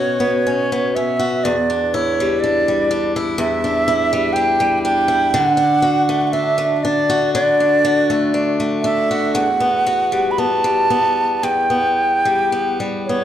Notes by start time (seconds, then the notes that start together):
Already playing: B2 B3 C#4 F#4 C#5
0.20 B3
0.47 C#4
0.72 B3
0.95 C#4 E5
1.19 F#4
1.44 E2 D5
1.70 D4
1.94 E4 C#5
2.20 G3
2.40 D4 D5
2.68 G3
2.91 D4
3.16 E4
3.38 E2 E5
3.64 D4
3.88 E4
4.13 G3
4.33 D4 G5
4.60 G3
4.83 D4 G5
5.08 E4
5.31 D3 F#5
5.57 D4
5.82 F#4
6.09 A3
6.27 F#5
6.33 D4 E5
6.58 A3
6.76 E5
6.83 D4 D5
7.10 F#4
7.34 D3 D5
7.60 D4
7.85 F#4
8.10 A3
8.34 D4
8.60 A3
8.82 D4 E5
9.11 F#4
9.34 E2 F#5
9.60 B3
9.86 F#4
10.12 G3
10.31 B5
10.38 B3 A5
10.64 G3
10.90 B3
11.43 E2 G5
11.70 B3
12.25 G3
12.52 B3
12.80 G3
13.06 B3 C#5